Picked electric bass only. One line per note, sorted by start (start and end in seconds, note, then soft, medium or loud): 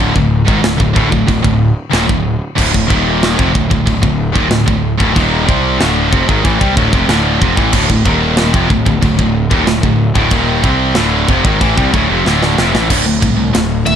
0.00 0.13 D1 loud
0.16 0.45 D1 medium
0.49 0.63 G#1 loud
0.64 0.79 D1 medium
0.80 0.95 D1 medium
0.97 1.11 D1 medium
1.13 1.27 D1 medium
1.28 1.43 D1 medium
1.44 1.74 D1 medium
1.93 2.08 D#1 loud
2.10 2.39 D1 medium
2.58 2.73 D1 medium
2.75 2.89 D1 medium
2.90 3.35 D#1 loud
3.39 3.53 F1 loud
3.55 3.70 D1 medium
3.71 3.85 D1 medium
3.87 4.02 D1 medium
4.04 4.33 D1 medium
4.36 4.50 D#1 loud
4.50 4.66 D1 medium
4.68 4.97 D1 medium
5.00 5.15 D1 loud
5.16 5.46 D#1 medium
5.49 5.79 C2 loud
5.81 6.10 D1 loud
6.13 6.28 F1 medium
6.29 6.44 G#1 loud
6.45 6.60 A1 loud
6.61 6.76 C2 loud
6.77 6.92 D1 loud
6.93 7.08 F1 loud
7.08 7.39 D1 loud
7.42 7.57 F1 loud
7.58 7.73 A1 loud
7.73 7.88 D1 loud
7.90 8.05 D1 medium
8.06 8.51 D#1 loud
8.54 8.69 F1 loud
8.71 8.86 D1 medium
8.86 9.01 D1 medium
9.02 9.17 D1 medium
9.19 9.49 D1 medium
9.51 9.66 D#1 loud
9.66 9.82 D1 medium
9.84 10.13 D1 medium
10.15 10.30 D1 loud
10.32 10.62 D#1 loud
10.64 10.94 C2 loud
10.96 11.26 D1 loud
11.29 11.43 F1 medium
11.45 11.60 G#1 loud
11.61 11.76 A1 loud
11.78 11.92 C2 loud
11.94 12.08 D1 medium
12.10 12.25 F1 loud
12.25 12.55 D1 medium
12.58 12.73 F1 loud
12.75 12.89 A1 loud
12.90 13.18 D1 medium
13.23 13.50 C2 medium
13.56 13.83 D1 medium
13.88 13.96 D1 medium